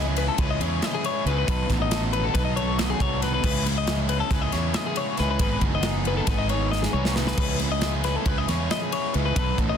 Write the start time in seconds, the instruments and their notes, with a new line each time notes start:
Already playing: fingered electric bass C#2, clean electric guitar E3, overdriven electric guitar G#3 C#4 E4
0.00 overdriven electric guitar G#4
0.16 overdriven electric guitar G#3 C#4 E4 G#4, clean electric guitar B4, ride
0.21 overdriven electric guitar C#3
0.28 clean electric guitar A4
0.38 fingered electric bass C#2, overdriven electric guitar G#3 C#4 E4 G#4, clean electric guitar B4, kick, ride
0.51 clean electric guitar D#5
0.60 fingered electric bass E2, overdriven electric guitar C#3 G#3 C#4 E4 G#4, clean electric guitar C#5, ride
0.82 overdriven electric guitar G#3 C#4 E4 G#4, clean electric guitar D#5, snare, ride
0.94 clean electric guitar G#4
1.04 overdriven electric guitar C#4 E4 G#4, clean electric guitar C#5, ride
1.26 fingered electric bass C#2, overdriven electric guitar C#3 G#3 C#4 E4 G#4, clean electric guitar B4, ride
1.38 clean electric guitar B4
1.48 fingered electric bass B1, overdriven electric guitar B2 D#3 F#3 B3 D#4 A4, clean electric guitar B4, kick, ride
1.70 fingered electric bass A1, overdriven electric guitar F#3 B3 D#4 A4, kick, snare, ride
1.82 clean electric guitar D#5
1.91 overdriven electric guitar F#3 B3 D#4 A4, snare, ride
2.13 overdriven electric guitar B2 D#3 F#3 B3 D#4 A4, clean electric guitar B4, ride
2.24 clean electric guitar A4
2.34 fingered electric bass B1, overdriven electric guitar F#3 B3 D#4, clean electric guitar B4, kick, snare, ride
2.38 overdriven electric guitar A4
2.45 clean electric guitar D#5
2.56 overdriven electric guitar B2 D#3 F#3 B3 D#4 A4, clean electric guitar C#5, ride
2.79 overdriven electric guitar F#3 B3 D#4 A4, clean electric guitar D#5, snare, ride
2.90 clean electric guitar G#4
3.00 fingered electric bass C2, overdriven electric guitar F#3 B3 D#4 A4, clean electric guitar C#5, kick, ride
3.22 overdriven electric guitar B2 D#3 F#3 B3 D#4 A4, clean electric guitar B4, snare, ride
3.34 clean electric guitar B4
3.43 fingered electric bass C#2, overdriven electric guitar C#3 G#3 C#4 E4 G#4, clean electric guitar B4, kick, crash
3.65 overdriven electric guitar C#4 E4 G#4, snare, ride
3.78 clean electric guitar D#5
3.87 overdriven electric guitar G#3 C#4 E4 G#4, snare, ride
4.08 overdriven electric guitar C#3 G#3 C#4 E4 G#4, clean electric guitar B4, ride
4.20 clean electric guitar A4
4.30 fingered electric bass C#2, overdriven electric guitar G#3 C#4 E4 G#4, clean electric guitar B4, kick, snare, ride
4.41 clean electric guitar D#5
4.52 fingered electric bass E2, overdriven electric guitar C#3 G#3 C#4 E4 G#4, clean electric guitar C#5, snare, ride
4.74 overdriven electric guitar G#3 C#4 E4 G#4, clean electric guitar D#5, snare, ride
4.86 clean electric guitar G#4
4.96 overdriven electric guitar C#4 E4 G#4, clean electric guitar C#5, ride
5.17 fingered electric bass C#2, overdriven electric guitar C#3 G#3 C#4 E4 G#4, clean electric guitar B4, snare, ride
5.31 clean electric guitar B4
5.39 fingered electric bass G#1, overdriven electric guitar G#2 D#3 G#3 B3 D#4 G#4, clean electric guitar B4, kick, ride
5.61 fingered electric bass F#1, overdriven electric guitar G#3 B3 D#4 G#4, kick, ride
5.75 clean electric guitar D#5
5.83 overdriven electric guitar G#3 B3 D#4, snare, ride
5.87 overdriven electric guitar G#4
6.05 overdriven electric guitar B3 D#4 G#4, clean electric guitar B4, ride
6.09 overdriven electric guitar G#2 D#3 G#3
6.17 clean electric guitar A4
6.27 fingered electric bass G#1, overdriven electric guitar G#3 B3, clean electric guitar B4, kick, snare, ride
6.31 overdriven electric guitar D#4 G#4
6.38 clean electric guitar D#5
6.49 overdriven electric guitar D#3 G#3 B3 D#4 G#4, clean electric guitar C#5, ride
6.54 overdriven electric guitar G#2
6.72 overdriven electric guitar G#3 B3 D#4, clean electric guitar D#5, snare
6.76 overdriven electric guitar G#4
6.82 clean electric guitar G#4, snare
6.93 fingered electric bass C2, overdriven electric guitar G#3 B3 D#4 G#4, clean electric guitar C#5
7.05 snare
7.15 overdriven electric guitar G#2 D#3 G#3 B3 D#4 G#4, clean electric guitar B4, snare
7.27 clean electric guitar B4, snare
7.38 fingered electric bass C#2, overdriven electric guitar C#3 G#3 C#4 E4 G#4, clean electric guitar B4, kick, crash
7.59 overdriven electric guitar C#4 E4 G#4, snare, ride
7.72 clean electric guitar D#5
7.81 overdriven electric guitar G#3 C#4 E4 G#4, snare, ride
8.04 overdriven electric guitar C#3 G#3 C#4 E4 G#4, clean electric guitar B4, snare, ride
8.16 clean electric guitar A4
8.26 fingered electric bass C#2, overdriven electric guitar G#3 C#4 E4 G#4, clean electric guitar B4, kick, ride
8.38 clean electric guitar D#5
8.48 fingered electric bass E2, overdriven electric guitar C#3 G#3 C#4 E4 G#4, clean electric guitar C#5, snare, ride
8.69 overdriven electric guitar G#3 C#4 E4 G#4, clean electric guitar D#5, snare, ride
8.82 clean electric guitar G#4
8.92 overdriven electric guitar C#4 E4 G#4, clean electric guitar C#5, ride
9.13 fingered electric bass C#2, overdriven electric guitar C#3 G#3 C#4 E4 G#4, clean electric guitar B4, ride
9.26 clean electric guitar B4
9.36 fingered electric bass B1, overdriven electric guitar B2 D#3 F#3 B3 D#4 A4, clean electric guitar B4, kick, ride
9.58 fingered electric bass A1, overdriven electric guitar F#3 B3 D#4 A4, kick, ride
9.70 clean electric guitar D#5